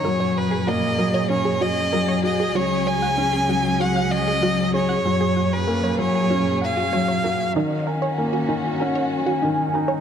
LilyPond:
<<
  \new Staff \with { instrumentName = "Violin" } { \time 4/4 \key fis \major \tempo 4 = 96 cis''8 b'8 dis''4 cis''8 dis''4 dis''8 | cis''8 gis''4. fis''8 dis''4 cis''8~ | cis''8. b'8. cis''4 eis''4. | dis''8 gis''4. fis''8 gis''4. | }
  \new Staff \with { instrumentName = "Synth arpeggio sound" } { \time 4/4 \key fis \major ais'16 cis''16 r16 gis'16 fis'16 r16 ais'16 cis''16 r16 gis'16 fis'16 r16 ais'16 cis''16 r16 gis'16 | fis'16 r16 cis''16 fis''16 r16 gis'16 fis'16 r16 cis''16 fis''16 r16 gis'16 fis'16 r16 cis''16 fis''16 | r16 gis'16 fis'16 r16 ais'16 cis''16 r16 gis'16 fis'16 r16 fis''16 fis'16 cis''16 cis''16 ais'16 r16 | dis'16 r16 ais'16 cis''16 r16 fis'16 dis'16 r16 ais'16 cis''16 r16 fis'16 dis'16 r16 ais'16 cis''16 | }
  \new Staff \with { instrumentName = "Felt piano" } { \clef bass \time 4/4 \key fis \major fis8 r8 ais8 fis8 cis'8 r8 fis8 fis'8 | fis8 r8 cis'8 fis8 fis'8 r8 fis8 gis'8 | fis8 r8 ais8 fis8 cis'8 r8 fis8 fis'8 | dis8 r8 ais8 dis8 cis'8 r8 dis8 dis'8 | }
  \new Staff \with { instrumentName = "String section" } { \clef bass \time 4/4 \key fis \major << { gis'1~ | gis'1 | gis'1 | fis'1 | } \\ { <ais, fis>1 | <fis cis'>1 | <ais, fis>1 | <dis cis'>1 | } >> }
  \new Staff \with { instrumentName = "Cello section" } { \clef bass \time 4/4 \key fis \major fis,1 | cis,1 | fis,1 | r1 | }
>>